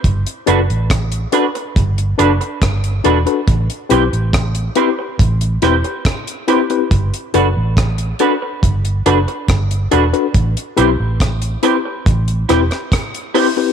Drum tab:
HH |xxxxxxxxxxxxxxxx|xxxxxxx-xxxxxxxx|xxx-xxx-xxxxxxxx|xxx-xxx-xxxxxxo-|
SD |----r-------r---|----r-----r-r---|----r-------r---|----r-----rrr---|
BD |o---o---o---o---|o---o---o---o---|o---o---o---o---|o---o---o---o---|